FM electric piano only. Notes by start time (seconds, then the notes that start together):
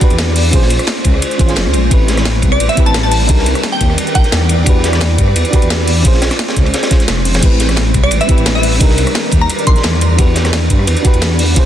Already playing: G4 B4
0.00 D4 F#4 G4 B4
0.51 C#4 F4 G#4
0.55 C5
1.38 C#4 F4 G#4 C5
1.46 C#4 F4 G#4
1.51 C5
1.89 C4 E4 G4
1.93 B4
2.75 C4 E4 G4
2.80 B4
3.27 D4 D#4 G4
3.31 A#4
4.14 D4 D#4 G4 A#4
4.64 D4 F#4 G4
4.69 B4
5.51 D4 F#4 G4
5.56 B4
6.02 C#4 F4 G#4
6.07 C5
6.90 C#4 F4 G#4 C5
7.40 C4 E4 G4
7.45 B4
8.27 C4 E4 G4
8.31 B4
8.78 D4 D#4 G4
8.83 A#4
9.66 D4 D#4 G4 A#4
10.16 D4 F#4 G4
10.21 B4
11.03 D4 F#4 G4
11.07 B4
11.54 C#4 F4 G#4
11.59 C5